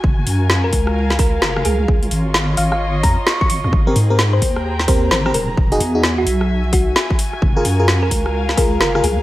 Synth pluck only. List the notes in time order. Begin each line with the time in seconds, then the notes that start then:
0.64 A#4
1.19 A#4
1.42 A#4
1.65 G#4
2.58 F5
2.72 F5
3.03 A#5
3.27 C#6
3.41 C#6
3.49 C#6
4.33 C5
4.88 C5
5.11 C5
5.26 A#4
5.34 A#4
6.18 F#4
6.73 F#4
8.03 A#4
8.57 A#4
8.81 A#4
9.04 G#4